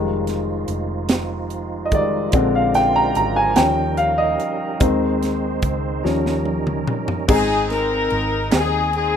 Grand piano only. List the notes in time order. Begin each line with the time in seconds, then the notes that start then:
Already playing: D#3 G3 G#3
1.85 D#5
1.92 D#3 G3 G#3 D5
2.33 D3 G#3 C4
2.55 F5
2.75 G5
2.96 A#5
3.17 A#5
3.36 G#5
3.55 F3 G3 C#4 G5
3.97 F5
4.18 D#5
4.80 D#3 G#3 C4
6.04 F3 G3 C#4
7.28 G#2 C4 D#4 G#4
8.51 C4 D#4 G4
8.59 G#4